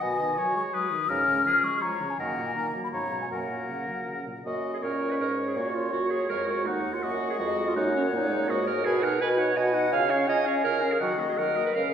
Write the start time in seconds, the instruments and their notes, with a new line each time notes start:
Already playing: oboe D#5
0.02 bassoon B2, french horn B2, clarinet F#4, flute G#5
0.20 french horn D#3
0.38 french horn F#3, oboe C#5
0.56 french horn G#3, flute C#6
0.73 french horn F#3, oboe B4, flute D#6
0.91 french horn D#3
1.09 french horn G#2, bassoon C#3, clarinet C#4, oboe A#4, flute F6
1.28 french horn C#3
1.46 french horn F3, oboe G#4
1.64 french horn G#3, flute C#6
1.82 french horn F3, oboe C#5, flute A#5
2.01 french horn C#3
2.10 flute G#5
2.19 french horn F#2, bassoon D#3, clarinet A#3, oboe A#4, flute F#5
2.38 french horn A#2
2.47 flute G#5
2.55 french horn D#3, flute A#5
2.75 french horn F#3
2.84 flute B5
2.92 french horn G#2, bassoon C#3, clarinet B3, oboe C#5, flute A#5
3.12 french horn B2
3.22 flute G#5
3.31 french horn F#2, bassoon F#2, clarinet A#3, oboe A#4, flute F#5
3.50 french horn A#2
3.69 french horn C#3
3.88 french horn F#3
4.07 french horn C#3
4.27 french horn A#2
4.46 bassoon F#2, french horn A#3, clarinet F#4, oboe D#5, flute D#5
4.74 clarinet G#4
4.82 bassoon A#2, french horn C#4, clarinet A#4, oboe C#5
5.11 clarinet B4
5.19 bassoon G#2, clarinet A#4, flute C#5
5.47 clarinet G#4
5.56 bassoon A#2, french horn A#3, clarinet F#4, oboe C#5
5.74 clarinet F4
5.92 bassoon F#2, french horn A#3, clarinet F#4
6.10 clarinet G#4
6.29 bassoon F2, french horn G#3, clarinet A#4
6.47 clarinet F#4
6.65 bassoon D#2, french horn A#3, clarinet D#4, flute F#5, oboe F#5
6.93 clarinet F4
7.02 bassoon F#2, french horn A#3, clarinet F#4, oboe D#5
7.30 clarinet G#4
7.39 bassoon F2, french horn G#3, clarinet F#4, flute D#5
7.68 clarinet F4
7.76 bassoon F#2, french horn A#3, clarinet D#4, flute C#5, oboe F#5
7.95 clarinet C#4
8.13 bassoon A#2, french horn A#3, clarinet D#4
8.30 french horn G#3
8.48 bassoon G#2, french horn A#3, clarinet F#4, oboe D#5
8.67 clarinet A#4
8.85 bassoon B2, french horn F#4, clarinet G#4, flute B4, oboe G#5
9.03 french horn D#4, clarinet A#4, oboe F#5
9.21 bassoon B2, french horn F#4, clarinet B4, flute D#5, oboe G#5
9.38 french horn D#4, clarinet C#5, oboe F#5
9.56 bassoon B2, french horn F#4, clarinet D#5, flute F#5, oboe G#5
9.73 french horn D#4, oboe F#5
9.92 bassoon C#3, french horn F4, flute F5, clarinet F5, oboe G#5
10.10 french horn C#4, clarinet C#5, oboe F5
10.28 bassoon C#3, french horn F4, clarinet D#5, oboe G#5, flute G#5
10.45 french horn C#4, clarinet C#5, oboe F5
10.64 bassoon C#3, french horn F4, clarinet A#4, oboe G#5
10.82 french horn C#4, oboe F5
10.92 clarinet G#4
10.99 bassoon D#3, french horn F#3, clarinet F#4, flute D#5, oboe F#5
11.19 french horn A#3, oboe D#5
11.29 clarinet G#4
11.37 bassoon D#3, french horn F#3, clarinet A#4, oboe F#5
11.56 french horn A#3, oboe D#5
11.66 clarinet B4
11.74 bassoon C#3, french horn C#4, clarinet A#4, oboe F5, flute F5